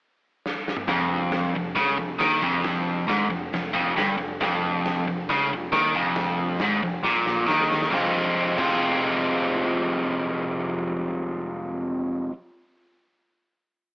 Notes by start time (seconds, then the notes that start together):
0.46 snare
0.68 snare
0.77 mid tom
0.87 F1 F2, kick, snare, open hi-hat
1.31 snare, open hi-hat
1.55 F1 F2
1.75 C#2 C#3, kick, snare, open hi-hat
1.97 F1 F2
2.20 D#2 D#3, snare, open hi-hat
2.42 F1 F2, kick
2.63 kick, snare, open hi-hat
3.08 G#1 G#2, snare, open hi-hat
3.29 F1 F2
3.52 F1 F2, snare, open hi-hat
3.73 F1 F2, kick
3.96 G1 G2, snare, open hi-hat
4.18 F1 F2
4.40 F1 F2, kick, snare, open hi-hat
4.85 snare, open hi-hat
5.06 F1 F2
5.29 C#2 C#3, kick, snare, open hi-hat
5.51 F1 F2
5.72 D#2 D#3, snare, open hi-hat
5.95 F1 F2, kick
6.15 kick, snare, open hi-hat
6.59 G#1 G#2, snare, open hi-hat
6.81 F1 F2
7.03 A#1 A#2, snare
7.26 snare
7.48 D#2 D#3, snare
7.61 snare
7.72 snare
7.82 snare
7.91 F1 F2 C3 F3 G#3 C4 F4, kick, snare
8.57 F1 F2 C3 F3 G#3 C4 F4, kick, crash